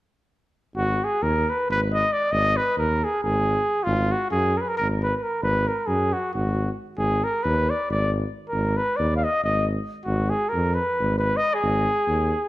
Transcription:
0.75 1.01 G#1 medium
0.75 1.06 F#4 medium
1.04 1.24 G#4 medium
1.22 1.47 D#2 medium
1.22 1.51 A#4 medium
1.50 1.69 B4 medium
1.69 2.03 G#1 medium
1.69 1.81 B4 medium
1.93 2.14 D#5 medium
2.12 2.33 D5 medium
2.32 2.57 G#1 medium
2.32 2.58 D#5 loud
2.57 2.77 B4 medium
2.77 3.03 D#2 medium
2.77 3.05 A#4 medium
3.04 3.23 G#4 medium
3.23 3.58 G#1 medium
3.23 3.85 G#4 medium
3.84 4.12 G#1 loud
3.84 4.13 F4 medium
4.12 4.31 F#4 medium
4.31 4.58 F#2 loud
4.31 4.59 G#4 medium
4.58 4.63 A#4 medium
4.58 4.70 B4 medium
4.68 4.77 A#4 medium
4.77 5.14 G#1 medium
4.77 4.88 A#4 medium
5.03 5.17 B4 medium
5.17 5.24 B4 medium
5.23 5.42 A#4 medium
5.42 5.67 G#1 medium
5.42 5.69 B4 medium
5.68 5.88 A#4 medium
5.87 6.14 F#2 medium
5.87 6.15 G#4 medium
6.13 6.33 F#4 medium
6.34 6.69 G#1 medium
6.34 6.70 F#4 medium
6.97 7.23 G#1 medium
6.97 7.25 G#4 medium
7.24 7.44 A#4 medium
7.43 7.70 D#2 medium
7.43 7.71 B4 medium
7.70 7.90 D5 medium
7.90 8.24 G#1 medium
7.90 8.12 D5 medium
8.49 8.78 A#4 medium
8.53 8.78 G#1 medium
8.77 8.98 B4 medium
8.96 9.24 D#2 medium
8.96 9.16 D5 medium
9.16 9.25 F5 medium
9.24 9.44 D#5 medium
9.44 9.78 G#1 medium
9.44 9.66 D#5 medium
10.05 10.32 G#1 loud
10.05 10.31 F#4 medium
10.30 10.50 G#4 medium
10.49 10.76 A#4 medium
10.54 10.79 F2 medium
10.74 11.18 B4 medium
11.00 11.34 G#1 medium
11.18 11.38 B4 medium
11.37 11.56 D#5 loud
11.54 12.48 G#4 medium
11.62 11.87 G#1 medium
12.07 12.32 D#2 medium

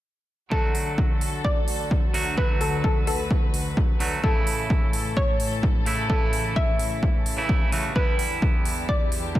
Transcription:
0.50 4.20 D2 medium
0.50 2.11 D3 medium
0.50 4.20 D3 medium
0.50 2.11 F#3 medium
0.50 2.12 A3 medium
0.50 4.20 F#4 medium
0.50 2.12 F#4 medium
0.50 2.36 A4 medium
0.50 1.41 A4 loud
0.50 kick loud
0.75 open hi-hat medium
0.98 kick loud
1.21 open hi-hat medium
1.45 2.40 D5 loud
1.45 kick loud
1.68 open hi-hat medium
1.91 kick loud
2.14 2.34 D3 medium
2.14 2.35 F#3 medium
2.14 2.35 A3 medium
2.14 2.35 F#4 medium
2.14 open hi-hat medium
2.36 3.97 D3 medium
2.36 3.97 F#3 medium
2.36 3.98 A3 medium
2.36 3.98 F#4 medium
2.36 4.22 B4 medium
2.36 2.62 B4 loud
2.36 kick loud
2.61 2.83 A4 medium
2.61 open hi-hat loud
2.84 3.06 A4 medium
2.84 kick loud
3.07 3.96 A4 medium
3.07 open hi-hat medium
3.31 kick loud
3.54 open hi-hat loud
3.77 kick loud
4.00 4.20 D3 medium
4.00 4.21 F#3 medium
4.00 4.21 A3 medium
4.00 4.21 F#4 medium
4.00 open hi-hat loud
4.22 7.92 A2 medium
4.22 5.83 C#3 medium
4.22 5.83 E3 medium
4.22 9.40 E3 medium
4.22 5.84 A3 medium
4.22 7.92 C#4 medium
4.22 5.84 E4 medium
4.22 5.19 A4 medium
4.22 7.92 A4 medium
4.22 kick loud
4.47 open hi-hat loud
4.70 kick loud
4.93 open hi-hat loud
5.17 5.82 C#5 loud
5.17 kick loud
5.40 open hi-hat loud
5.63 kick loud
5.86 6.07 C#3 medium
5.86 6.07 E3 medium
5.86 6.07 A3 medium
5.86 6.07 E4 medium
5.86 open hi-hat loud
6.09 7.35 C#3 medium
6.09 7.35 E3 medium
6.09 7.36 E4 medium
6.09 6.58 A4 loud
6.09 kick loud
6.33 open hi-hat loud
6.56 7.68 E5 loud
6.56 kick loud
6.79 open hi-hat medium
7.03 kick loud
7.26 open hi-hat loud
7.37 7.69 C#3 medium
7.37 7.70 E3 medium
7.37 7.70 A3 medium
7.37 7.70 E4 medium
7.49 kick loud
7.72 7.93 C#3 medium
7.72 7.93 E3 medium
7.72 7.93 A3 medium
7.72 7.93 F#4 medium
7.72 open hi-hat loud
7.94 9.40 E2 medium
7.94 9.40 D3 medium
7.94 9.40 B3 medium
7.94 9.40 D4 medium
7.94 9.40 E4 medium
7.94 9.40 G4 medium
7.94 8.92 B4 medium
7.94 kick loud
8.19 open hi-hat medium
8.42 kick loud
8.65 open hi-hat medium
8.89 9.40 D5 medium
8.89 kick loud
9.12 open hi-hat medium
9.35 kick loud

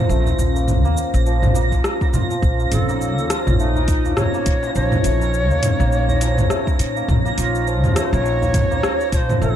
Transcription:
0.00 1.25 F3 medium
0.00 0.16 A#3 loud
0.00 9.56 C#4 medium
0.00 2.38 F4 medium
0.00 2.42 C5 medium
0.00 9.56 A#6 medium
0.09 0.31 A#1 medium
0.09 0.61 A3 medium
0.09 cabasa soft
0.27 darbuka dum medium
0.27 cabasa soft
0.39 0.85 A#1 medium
0.39 darbuka tek soft
0.39 darbuka dum medium
0.39 cabasa medium
0.55 0.84 A#3 medium
0.55 cabasa soft
0.68 mid tom medium
0.68 cabasa soft
0.85 0.93 D#2 loud
0.85 1.55 A#3 loud
0.85 cabasa soft
0.97 cabasa medium
1.14 1.78 A#1 medium
1.14 cabasa soft
1.26 2.29 F3 medium
1.26 cabasa soft
1.43 mid tom medium
1.43 darbuka ka soft
1.43 darbuka dum medium
1.43 cabasa soft
1.54 2.01 A#3 medium
1.54 darbuka ka medium
1.54 darbuka tek medium
1.54 cabasa medium
1.72 kick medium
1.72 darbuka tek medium
1.72 cabasa soft
1.84 cross-stick medium
1.84 cabasa soft
2.01 2.59 A#3 medium
2.01 kick loud
2.01 darbuka tek medium
2.01 cabasa soft
2.13 2.35 A#2 medium
2.13 5.50 F4 loud
2.13 mid tom medium
2.13 cabasa medium
2.30 3.29 F3 medium
2.30 cabasa soft
2.42 2.64 A#1 medium
2.42 9.56 D#4 medium
2.42 9.56 C#5 medium
2.42 kick loud
2.42 cabasa soft
2.60 2.88 A#3 medium
2.60 cabasa soft
2.72 3.18 A#1 medium
2.72 3.26 A4 medium
2.72 closed hi-hat medium
2.72 mid tom medium
2.72 cabasa medium
2.89 3.65 A#3 loud
2.89 cabasa soft
3.01 cabasa soft
3.18 3.26 D#2 loud
3.18 cabasa soft
3.30 4.75 F3 medium
3.30 3.57 F4 loud
3.30 3.34 F#4 medium
3.30 cross-stick medium
3.30 closed hi-hat medium
3.30 cabasa medium
3.47 4.11 A#1 medium
3.47 mid tom medium
3.47 cabasa soft
3.59 3.82 A3 medium
3.59 4.13 D#4 loud
3.59 cabasa soft
3.76 5.11 A#4 medium
3.76 darbuka dum medium
3.76 cabasa soft
3.88 kick loud
3.88 closed hi-hat medium
3.88 darbuka ka medium
3.88 darbuka tek medium
3.88 cabasa medium
4.05 4.34 A#3 medium
4.05 darbuka ka soft
4.05 darbuka dum medium
4.05 cabasa soft
4.17 4.72 C#5 loud
4.17 cross-stick medium
4.17 mid tom medium
4.17 cabasa soft
4.34 5.11 A#3 loud
4.34 cabasa soft
4.46 4.68 A#2 medium
4.46 kick loud
4.46 closed hi-hat medium
4.46 cabasa medium
4.63 darbuka tek medium
4.63 cabasa soft
4.75 4.97 A#1 loud
4.75 6.20 F3 medium
4.75 6.75 C#5 loud
4.75 cabasa soft
4.92 mid tom medium
4.92 darbuka dum medium
4.92 cabasa soft
5.04 5.51 A#1 medium
5.04 5.28 A3 medium
5.04 closed hi-hat medium
5.04 darbuka dum medium
5.04 cabasa medium
5.22 6.56 A#4 medium
5.22 cabasa soft
5.34 cabasa soft
5.51 5.59 D#2 loud
5.51 5.79 A#3 medium
5.51 cabasa soft
5.63 closed hi-hat medium
5.63 mid tom medium
5.63 cabasa medium
5.80 6.44 A#1 medium
5.80 6.56 A#3 loud
5.80 cabasa soft
5.92 cabasa soft
6.08 darbuka ka soft
6.08 darbuka dum medium
6.08 cabasa soft
6.21 7.66 F3 medium
6.21 closed hi-hat medium
6.21 darbuka ka medium
6.21 darbuka tek medium
6.21 cabasa medium
6.37 mid tom medium
6.37 darbuka tek medium
6.37 cabasa soft
6.50 6.73 A3 medium
6.50 cross-stick medium
6.50 cabasa soft
6.67 8.02 A#4 medium
6.67 kick loud
6.67 darbuka tek medium
6.67 cabasa soft
6.79 7.01 A#2 medium
6.79 closed hi-hat medium
6.79 cabasa medium
6.96 7.25 A#3 medium
6.96 cabasa soft
7.08 7.30 A#1 medium
7.08 kick loud
7.08 mid tom medium
7.08 cabasa soft
7.25 8.02 A#3 loud
7.25 cabasa soft
7.38 7.83 A#1 medium
7.38 7.97 F4 medium
7.38 closed hi-hat medium
7.38 cabasa medium
7.55 cabasa soft
7.67 9.11 F3 medium
7.67 cabasa soft
7.83 7.92 D#2 loud
7.83 mid tom medium
7.83 cabasa soft
7.96 8.19 A3 medium
7.96 8.06 C#5 loud
7.96 cross-stick medium
7.96 closed hi-hat medium
7.96 cabasa medium
8.04 8.14 C5 loud
8.12 8.77 A#1 loud
8.12 9.48 A#4 medium
8.12 9.12 C#5 loud
8.12 cabasa soft
8.26 cabasa soft
8.42 8.71 A#3 medium
8.42 darbuka dum medium
8.42 cabasa soft
8.54 kick loud
8.54 closed hi-hat medium
8.54 mid tom medium
8.54 darbuka ka medium
8.54 darbuka tek medium
8.54 cabasa medium
8.71 9.48 A#3 loud
8.71 darbuka ka soft
8.71 darbuka dum medium
8.71 cabasa soft
8.83 cross-stick medium
8.83 cabasa soft
9.01 cabasa soft
9.12 9.34 A#2 medium
9.12 9.56 F3 medium
9.12 9.17 C#5 loud
9.12 kick loud
9.12 closed hi-hat medium
9.12 cabasa medium
9.16 9.40 C5 loud
9.29 mid tom medium
9.29 darbuka tek medium
9.29 cabasa soft
9.42 9.56 A#1 medium
9.42 9.56 A3 medium
9.42 9.51 A#4 loud
9.42 cabasa soft
9.49 9.56 A4 medium

